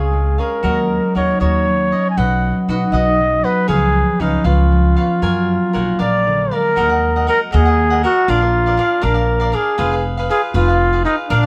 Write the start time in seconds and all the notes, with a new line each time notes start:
Already playing: C#2 G#3 C4 F4 G#4 C#5 F5
0.13 G#3
0.38 C#4 G#4 A#4 C#5 F5
0.63 D#2 F#3 F#4 A#4 C#5 D#5
1.15 D#2 D#4 F#4 A#4 C#5 D#5
1.40 D#2 F#4 A#4 C#5 D#5
1.68 F#3
1.92 C#4 A#4 C#5 D#5
2.10 G#5
2.17 B1 F#3 F#4 B4 D#5 F#5
2.68 B1 D#4 F#4 B4 D#5 F#5
2.92 B1 F#4 B4 D#5 F#5
3.20 F#3
3.44 B3 B4 D#5 F#5
3.68 C#2 F3 G#4 B4 C#5 F5
4.20 C#2 C#4 D#4 G#4 B4 C#5 F5
4.44 C#2 F4 G#4 B4 C#5 F5
4.72 F3
4.96 B3 B4 C#5 F5
5.22 F#2 F#3 A#4 C#5 G#5
5.73 B1 A#3 A#4 C#5 F#5 G#5
5.99 A#1 D4 G#4 A#4 D5 F5
6.27 D3
6.51 G#3 A#4 D5 F5
6.76 D#2 F#4 A#4 D#5 F#5
6.89 A#4 D#5 F#5
7.16 A#4 D#5 F#5
7.27 F#4 A#4 D#5 F#5
7.52 D#2 F#4 G#4 A#4 D#5 F#5
7.65 A#4 D#5 F#5
7.90 A#4 D#5 F#5
8.03 F#4 A#4 D#5 F#5
8.28 A#1 D4 F4 A#4 D5 F5
8.41 A#4 D5 F5
8.66 A#4 D5 F5
8.77 D4 A#4 D5 F5
9.01 A#1 D4 A#4 D5 F5
9.14 A#4 D5 F5
9.40 A#4 D5 F5
9.52 D4 G#4 A#4 D5 F5
9.78 F1 F4 G#4 B4 F5
9.92 G#4 B4 F5
10.17 G#4 B4 F5
10.30 F4 G#4 B4 F5
10.54 F1 F4 G#4 B4 F5
10.68 G#4 B4 F5
10.92 G#4 B4 F5
11.05 D#4 F4 G#4 B4 F5
11.29 A#1 D4 A#4 D5 F5
11.42 F5